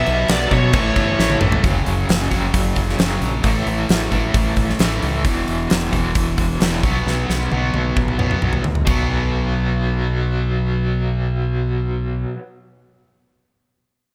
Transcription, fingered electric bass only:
0.07 0.23 B1 medium
0.29 0.46 B1 loud
0.52 0.75 B2 loud
0.74 0.90 A1 medium
0.96 1.13 G1 medium
1.19 1.35 A1 medium
1.41 1.58 A1 loud
1.64 1.82 F#1 loud
1.86 2.05 F#1 medium
2.09 2.27 F#1 medium
2.32 2.50 F#1 medium
2.54 2.72 F#1 medium
2.77 2.95 F#1 medium
2.99 3.17 F#1 medium
3.21 3.40 A#1 medium
3.44 3.62 A1 medium
3.67 3.85 A1 medium
3.89 4.08 A1 medium
4.12 4.30 A1 medium
4.34 4.71 A1 medium
4.80 4.98 A1 medium
5.03 5.26 C#2 medium
5.25 5.43 E1 medium
5.48 5.66 E1 medium
5.71 5.89 E1 medium
5.93 6.11 E1 medium
6.15 6.34 E1 medium
6.38 6.56 E1 medium
6.61 6.80 E1 medium
6.83 7.02 B1 medium
7.06 7.25 B1 medium
7.29 7.47 B1 medium
7.52 7.70 B1 medium
7.74 7.92 B1 medium
7.97 8.34 B1 medium
8.42 8.61 B1 medium
8.64 8.83 D2 medium
8.87 12.24 B1 medium

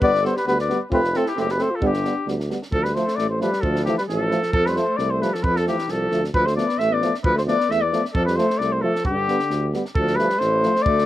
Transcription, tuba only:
0.01 0.26 G1 medium
0.46 0.71 D2 medium
0.91 1.16 F1 medium
1.37 1.61 F#1 medium
1.82 2.07 G1 medium
2.26 2.51 D2 medium
2.71 2.96 D2 medium
3.17 3.42 A1 medium
3.63 3.88 D2 medium
4.09 4.33 A1 medium
4.54 4.78 F2 medium
4.98 5.23 C2 medium
5.43 5.68 F2 medium
5.89 6.09 C2 medium
6.11 6.31 D2 medium
6.33 6.58 D2 medium
6.78 7.03 A1 medium
7.24 7.49 D2 medium
7.69 7.94 E2 medium
8.15 8.39 F2 medium
8.59 8.84 C2 medium
9.05 9.30 G2 medium
9.50 9.75 D2 medium
9.96 10.21 D2 medium
10.40 10.66 A1 medium
10.86 11.06 D2 medium

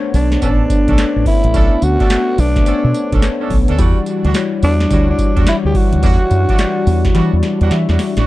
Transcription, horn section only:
0.42 0.63 C#4 medium
0.42 0.63 D4 medium
0.42 0.63 A4 medium
0.88 1.04 C#4 medium
0.88 1.04 D4 medium
0.88 1.04 A4 medium
1.54 1.75 C#4 loud
1.54 1.75 D4 medium
1.54 1.75 A4 loud
2.00 2.16 C#4 medium
2.00 2.16 D4 medium
2.00 2.16 A4 medium
2.66 2.87 C#4 medium
2.66 2.88 D4 medium
2.66 2.88 A4 medium
3.12 3.28 C#4 medium
3.12 3.28 D4 medium
3.12 3.28 A4 medium
3.40 3.56 C#4 medium
3.40 3.56 D4 medium
3.40 3.56 A4 medium
3.68 3.84 C#4 medium
3.68 3.77 D4 medium
3.68 3.84 A4 medium
3.78 4.00 G3 loud
3.78 4.00 D4 medium
3.78 4.00 F#4 loud
4.24 4.40 G3 medium
4.24 4.40 D4 medium
4.24 4.40 F#4 medium
4.90 5.12 G3 medium
4.90 5.12 D4 medium
4.90 5.12 F#4 medium
5.36 5.52 G3 medium
5.36 5.52 D4 medium
5.36 5.53 F#4 medium
6.03 6.24 G3 loud
6.03 6.24 D4 medium
6.03 6.24 F#4 loud
6.49 6.64 G3 medium
6.49 6.65 D4 medium
6.49 6.65 F#4 medium
7.15 7.36 G3 medium
7.15 7.36 D4 medium
7.15 7.36 F#4 medium
7.61 7.77 G3 medium
7.61 7.77 D4 medium
7.61 7.77 F#4 medium
7.89 8.05 G3 medium
7.89 8.05 D4 medium
7.89 8.05 F#4 medium
8.17 8.27 G3 medium
8.17 8.26 D4 medium
8.17 8.27 F#4 medium

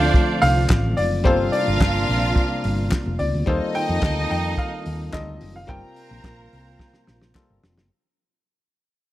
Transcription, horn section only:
0.00 0.94 A3 medium
0.00 0.94 F4 medium
0.00 0.94 C5 loud
1.25 3.16 F3 medium
1.25 3.16 D4 medium
1.25 3.16 A#4 loud
3.47 5.37 A#3 medium
3.47 5.37 A4 medium
3.47 5.37 D#5 loud
5.69 7.59 A#3 medium
5.69 7.59 F4 medium
5.69 7.59 C5 loud

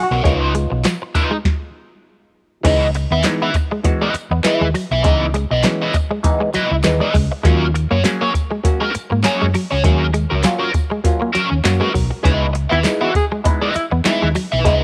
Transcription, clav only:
0.03 0.22 F#4 loud
0.24 2.60 B3 medium
0.24 2.61 D#4 soft
0.24 2.61 F4 medium
0.24 1.70 C#5 loud
2.63 2.90 E3 medium
2.63 2.90 G#3 medium
2.63 2.90 B3 medium
2.63 2.91 D#4 loud
3.23 3.50 E3 medium
3.23 3.50 G#3 medium
3.23 3.50 B3 loud
3.23 3.51 D#4 loud
3.83 4.10 E3 medium
3.83 4.10 G#3 medium
3.83 4.10 B3 medium
3.83 4.11 F#4 loud
4.43 4.70 E3 medium
4.43 4.70 G#3 medium
4.43 4.70 B3 medium
4.43 4.70 E4 loud
5.03 5.29 E3 medium
5.03 5.30 G#3 medium
5.03 5.30 B3 medium
5.03 5.30 D#4 loud
5.63 5.90 E3 medium
5.63 5.90 G#3 medium
5.63 5.90 B3 medium
5.63 5.91 C#4 loud
6.23 6.50 E3 medium
6.23 6.50 G#3 medium
6.23 6.50 B3 medium
6.23 6.50 D#4 loud
6.83 7.10 E3 medium
6.83 7.10 G#3 medium
6.83 7.10 B3 medium
6.83 7.10 D#4 medium
7.43 7.70 F#3 medium
7.43 7.70 A#3 medium
7.43 7.70 C#4 medium
7.43 7.70 F4 loud
8.03 8.30 F#3 loud
8.03 8.30 A#3 medium
8.03 8.30 C#4 medium
8.03 8.31 G#4 loud
8.63 8.90 F#3 medium
8.63 8.90 A#3 medium
8.63 8.90 C#4 medium
8.63 8.91 F#4 medium
9.24 9.50 F#3 medium
9.24 9.50 A#3 medium
9.24 9.50 C#4 medium
9.24 9.51 G#4 loud
9.84 10.10 F#3 medium
9.84 10.10 A#3 medium
9.84 10.10 C#4 medium
9.84 10.10 G#4 loud
10.44 10.70 F#3 loud
10.44 10.70 A#3 medium
10.44 10.71 C#4 medium
10.44 10.71 F4 loud
11.04 11.30 F#3 medium
11.04 11.30 A#3 medium
11.04 11.31 C#4 medium
11.04 11.31 F4 loud
11.64 11.90 F#3 medium
11.64 11.91 A#3 medium
11.64 11.91 C#4 medium
11.64 11.91 F#4 loud
11.64 11.80 C#5 medium
11.81 11.94 B4 medium
11.94 12.22 A#4 medium
12.23 12.50 G#3 loud
12.23 12.50 B3 medium
12.23 12.51 D#4 medium
12.23 12.51 E4 loud
12.83 13.10 G#3 loud
12.83 13.10 B3 medium
12.83 13.11 D#4 loud
12.83 13.11 E4 loud
13.44 13.71 G#3 medium
13.44 13.71 B3 medium
13.44 13.71 D#4 medium
13.44 13.72 E4 loud
14.04 14.31 G#3 medium
14.04 14.31 B3 medium
14.04 14.32 D#4 medium
14.04 14.32 E4 loud
14.64 14.84 G#3 medium
14.64 14.84 B3 medium
14.64 14.84 D#4 medium
14.64 14.84 E4 loud

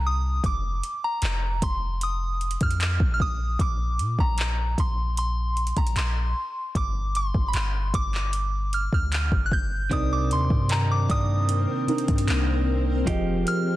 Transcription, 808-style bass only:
0.00 0.40 C2 loud
0.44 0.81 F1 loud
1.22 1.60 F1 loud
1.62 2.57 F1 loud
2.61 2.99 F2 medium
3.00 3.57 A#1 loud
3.59 4.00 A#1 loud
3.99 4.17 A#2 medium
4.19 4.75 A#1 loud
4.78 5.73 A#1 loud
5.77 5.95 A#1 loud
5.96 6.34 A#1 loud
6.75 7.32 G1 loud
7.35 7.53 G1 loud
7.54 7.92 G1 loud
7.94 8.88 G1 loud
8.93 9.30 D2 loud
9.32 9.89 G1 medium
9.91 10.32 C2 loud
10.30 10.49 D#2 loud
10.50 11.07 G2 loud
11.10 11.66 G2 loud
12.08 12.27 G2 loud
12.28 13.04 C2 loud
13.07 13.45 F1 loud

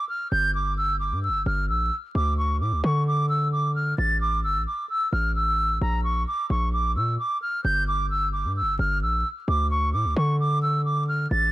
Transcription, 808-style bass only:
0.32 1.13 G1 loud
1.12 1.31 G2 loud
1.29 1.45 G1 loud
1.46 1.71 G1 loud
1.69 1.91 A#1 loud
2.15 2.62 D2 loud
2.61 2.74 A2 loud
2.72 2.83 D2 loud
2.84 3.94 D3 loud
3.98 4.45 A1 loud
4.44 4.57 G1 loud
4.55 4.66 A1 loud
5.13 5.79 A1 loud
5.81 6.25 A#1 loud
6.50 6.97 A#1 loud
6.96 7.18 A#2 loud
7.65 8.46 G1 loud
8.45 8.63 G2 loud
8.62 8.78 G1 loud
8.79 9.04 G1 loud
9.02 9.24 A#1 loud
9.48 9.95 D2 loud
9.94 10.07 A2 loud
10.05 10.16 D2 loud
10.17 11.27 D3 loud
11.31 11.52 A1 loud

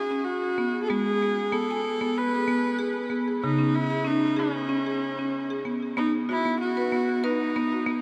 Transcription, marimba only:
0.00 0.11 G#4 medium
0.11 0.42 C#4 medium
0.44 0.57 G#4 medium
0.58 0.89 B3 medium
0.90 3.40 G#3 medium
0.90 1.21 B3 medium
1.22 1.53 G#4 medium
1.52 1.69 B3 medium
1.71 2.02 G#5 medium
2.01 2.33 B3 medium
2.35 2.48 G#4 medium
2.48 2.79 B3 medium
2.79 3.11 G#4 medium
3.10 3.28 B3 medium
3.28 3.60 G#4 medium
3.44 5.93 C#3 medium
3.59 3.91 C#4 medium
3.90 4.06 G#4 medium
4.04 4.37 C#4 medium
4.37 4.69 G#4 medium
4.69 4.87 C#4 medium
4.86 5.19 G#4 medium
5.19 5.50 C#4 medium
5.50 5.65 G#4 medium
5.65 5.96 B3 medium
5.97 6.29 B3 medium
6.29 6.46 F#4 medium
6.45 6.77 B3 medium
6.77 6.92 B4 medium
6.92 7.24 B3 medium
7.24 7.55 B4 medium
7.56 7.73 B3 medium
7.72 7.87 F#4 medium
7.87 8.02 B3 medium

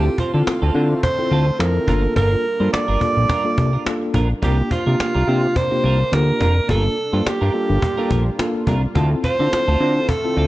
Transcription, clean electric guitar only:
0.06 muted clean electric guitar stroke soft
0.18 0.30 C4 medium
0.18 0.31 F4 medium
0.18 0.31 C5 medium
0.34 0.44 C4 medium
0.34 0.44 F4 medium
0.34 0.43 A4 medium
0.62 0.73 C4 medium
0.62 0.74 F4 medium
0.62 0.74 A4 medium
0.74 0.87 C4 medium
0.74 0.87 F4 medium
0.74 0.88 C5 medium
0.90 muted clean electric guitar stroke medium
1.19 muted clean electric guitar stroke soft
1.31 1.47 C4 medium
1.31 1.47 F4 medium
1.31 1.46 A4 loud
1.47 muted clean electric guitar stroke soft
1.75 muted clean electric guitar stroke medium
1.87 2.03 D4 medium
1.87 2.04 F4 medium
1.87 2.02 A#4 loud
2.04 muted clean electric guitar stroke soft
2.16 2.32 D4 loud
2.16 2.32 F4 medium
2.16 2.31 A#4 loud
2.32 muted clean electric guitar stroke medium
2.44 muted clean electric guitar stroke soft
2.60 2.71 D4 soft
2.60 2.70 F4 medium
2.60 2.70 C5 medium
2.72 muted clean electric guitar stroke soft
2.88 2.99 D4 medium
2.88 3.00 F4 medium
2.88 3.01 A#4 medium
3.01 muted clean electric guitar stroke soft
3.17 muted clean electric guitar stroke soft
3.29 3.45 D4 medium
3.29 3.45 F4 medium
3.29 3.44 A#4 loud
3.45 muted clean electric guitar stroke medium
3.57 muted clean electric guitar stroke soft
3.73 3.84 D4 soft
3.73 3.84 F4 medium
3.73 3.83 A#4 medium
3.86 muted clean electric guitar stroke soft
4.02 muted clean electric guitar stroke soft
4.14 4.30 D4 medium
4.14 4.30 F4 loud
4.14 4.28 A#4 loud
4.30 muted clean electric guitar stroke medium
4.42 4.58 D4 loud
4.42 4.58 F4 loud
4.42 4.57 A#4 loud
4.58 muted clean electric guitar stroke soft
4.71 4.83 D4 medium
4.71 4.83 F4 medium
4.71 4.84 C5 medium
4.86 4.97 D4 medium
4.86 4.97 F4 medium
4.86 4.96 A#4 medium
4.99 muted clean electric guitar stroke soft
5.14 5.26 D4 medium
5.14 5.27 F4 medium
5.14 5.27 A#4 medium
5.27 5.39 D4 medium
5.27 5.40 F4 medium
5.27 5.40 C5 medium
5.71 muted clean electric guitar stroke medium
5.84 6.00 D4 medium
5.84 6.00 F4 loud
5.84 5.99 A#4 loud
6.00 muted clean electric guitar stroke soft
6.28 muted clean electric guitar stroke soft
6.40 6.56 D4 medium
6.40 6.56 F4 medium
6.40 6.55 A#4 loud
6.56 muted clean electric guitar stroke soft
6.69 6.84 D4 loud
6.69 6.85 F4 loud
6.69 6.83 A#4 loud
6.84 muted clean electric guitar stroke soft
6.97 muted clean electric guitar stroke soft
7.12 7.23 D4 medium
7.12 7.23 F4 medium
7.12 7.22 C5 medium
7.25 muted clean electric guitar stroke soft
7.41 7.52 D4 medium
7.41 7.53 F4 medium
7.41 7.53 A#4 medium
7.54 muted clean electric guitar stroke soft
7.69 muted clean electric guitar stroke soft
7.82 muted clean electric guitar stroke soft
7.97 8.09 D4 medium
7.97 8.10 F4 medium
7.97 8.10 A#4 medium
8.10 8.22 D4 medium
8.10 8.23 F4 medium
8.10 8.23 A#4 medium
8.26 muted clean electric guitar stroke medium
8.55 muted clean electric guitar stroke soft
8.67 8.83 D4 medium
8.67 8.83 F4 medium
8.67 8.81 A#4 medium
8.83 muted clean electric guitar stroke soft
8.95 9.11 C4 medium
8.95 9.11 F4 loud
8.95 9.10 A4 loud
9.11 muted clean electric guitar stroke soft
9.23 9.36 C4 medium
9.23 9.36 F4 medium
9.23 9.37 C5 medium
9.39 9.50 C4 medium
9.39 9.50 F4 medium
9.39 9.49 A4 medium
9.67 9.79 C4 medium
9.67 9.80 F4 medium
9.67 9.80 A4 medium
9.80 9.92 C4 medium
9.80 9.93 F4 medium
9.80 9.93 C5 medium
10.24 muted clean electric guitar stroke soft
10.36 10.47 C4 medium
10.36 10.47 F4 medium
10.36 10.47 A4 loud

